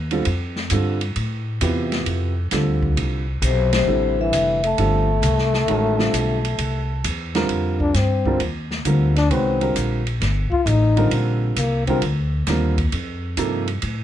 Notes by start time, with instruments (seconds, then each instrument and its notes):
Already playing: upright bass D#2
0.11 grand piano D3 G3 C4 F4 A4, ride
0.25 upright bass F2, ride
0.56 snare
0.70 upright bass G2, grand piano D3 G3 C4 F4 A4, hi-hat pedal, ride
1.01 ride
1.16 upright bass A2, ride
1.61 upright bass E2, grand piano C3 B3 E4 F4 G4, hi-hat pedal, ride
1.92 snare, ride
2.06 upright bass F2, ride
2.51 upright bass D2, grand piano D3 G3 C4 F4 A4, snare, hi-hat pedal, ride
2.83 kick
2.97 upright bass C2, ride
3.42 upright bass B1, trombone C3, vibraphone C5, hi-hat pedal, ride
3.73 trombone C3, vibraphone C5, snare, ride
3.87 upright bass A1, grand piano D3 G3 C4 E4 A4
4.20 trombone E3, vibraphone E5
4.33 upright bass F1, hi-hat pedal, ride
4.64 trombone A3, vibraphone A5, ride
4.78 upright bass G1, grand piano D3 G3 C4 F4 A4, ride
5.22 upright bass C2, hi-hat pedal, ride
5.38 snare
5.54 snare
5.68 upright bass A1, grand piano D#3 G#3 C#4 F#4 A#4, ride
5.99 grand piano D3 G3 C4 F4 A4, snare
6.13 upright bass B1, hi-hat pedal, ride
6.45 ride
6.58 upright bass C2, ride
7.04 upright bass E2, hi-hat pedal, ride
7.35 grand piano D3 G3 C4 F4 A#4, snare, ride
7.49 upright bass F2, ride
7.80 trombone D4, kick
7.94 upright bass G2, trombone C4, snare, hi-hat pedal, ride
8.25 grand piano D3 G3 C4 F4 A#4, kick
8.40 upright bass D#2, ride
8.71 snare
8.85 upright bass D2, grand piano D3 G3 C4 F4 A#4, hi-hat pedal, ride
9.16 trombone D4, snare, ride
9.30 upright bass C2, grand piano D#3 G#3 C#4 F#4 B4, trombone C4, ride
9.61 grand piano D3 G3 C4 F4 A#4, ride
9.75 upright bass A#1, hi-hat pedal, ride
10.07 ride
10.21 upright bass G1, snare, ride
10.51 trombone F4, kick
10.66 upright bass A1, trombone D#4, hi-hat pedal, ride
10.96 grand piano D3 G3 C4 F4 A#4, ride
11.11 upright bass A#1, ride
11.56 upright bass C2, trombone A#3, hi-hat pedal, ride
11.87 grand piano D3 G3 C4 F4 A#4, trombone C4, kick, ride
12.02 upright bass D2, ride
12.47 upright bass D#2, grand piano D3 G3 C4 F4 A#4, snare, hi-hat pedal, ride
12.78 kick, ride
12.92 upright bass F2, ride
13.37 upright bass G2, grand piano C3 F3 A#3 D#4 A4, hi-hat pedal, ride
13.67 ride
13.82 upright bass A2, ride